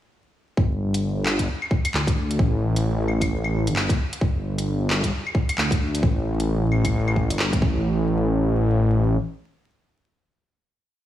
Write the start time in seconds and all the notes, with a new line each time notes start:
0.57 G1, kick
0.94 closed hi-hat
1.26 clap
1.39 kick, closed hi-hat
1.62 claves
1.71 kick
1.85 closed hi-hat, claves
1.94 D2, clap
2.07 kick, closed hi-hat
2.31 closed hi-hat
2.39 A1, kick
2.76 closed hi-hat
3.08 claves
3.21 kick, closed hi-hat, claves
3.44 claves
3.67 G1, closed hi-hat
3.76 clap
3.89 kick, closed hi-hat
4.13 closed hi-hat
4.21 G1, kick
4.58 closed hi-hat
4.90 clap
5.03 kick, closed hi-hat
5.27 claves
5.35 kick
5.49 closed hi-hat, claves
5.58 D2, clap
5.71 kick, closed hi-hat
5.95 closed hi-hat
6.03 A1, kick
6.40 closed hi-hat
6.72 claves
6.85 kick, closed hi-hat, claves
7.08 claves
7.16 kick
7.30 G1, closed hi-hat
7.39 clap
7.53 kick, closed hi-hat
7.62 A1, kick